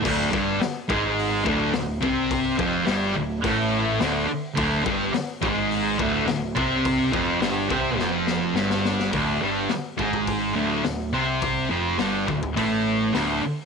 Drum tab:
CC |x---------------|----------------|----------------|----------------|
HH |----o---o---o---|o---o---o---o---|o---o---o---o---|o---o-----------|
SD |----o-------o---|----o-------o---|----o-------o---|----o---o-o-oooo|
BD |o-o---o---o---o-|o-o-----o-------|o-o---o---o---o-|o-o---o---------|

CC |----------------|----------------|
HH |o---o---o---o---|o---o---o---o---|
SD |----o-------o---|----o-------o---|
BD |o-----ooo-------|o-----ooo-------|